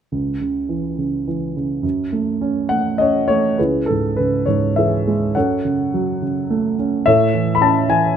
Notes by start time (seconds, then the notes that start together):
0.12 C#2
0.41 C#3
0.69 E3
0.99 C#3
1.28 E3
1.57 C#3
1.83 F#2
2.12 A3
2.41 C#4
2.69 A3 F#5
2.98 C#4 C#5 D#5
3.28 A3 C#5
3.58 C#2 E4 G#4 B4
3.86 A4
3.90 G#2
4.17 C#3 B4
4.46 G#2 C#5
4.76 E3 G#4 B4 E5
5.07 G#3
5.35 F#2 A4 C#5 F#5
5.65 C#3
5.94 F#3
6.22 C#3
6.50 A3
6.79 C#4
7.06 A2 A4 C#5 E5
7.34 E3
7.55 B5
7.61 C#4 A5
7.88 E3 G#5